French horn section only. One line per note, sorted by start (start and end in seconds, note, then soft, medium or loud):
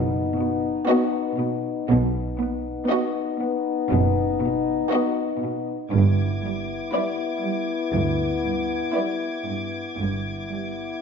0.00 1.85 B3 medium
0.00 1.85 D#4 medium
1.89 5.75 B3 medium
1.89 5.75 D#4 medium
5.92 9.96 B3 medium
5.92 9.96 E4 medium
10.00 11.02 B3 soft
10.00 11.02 E4 soft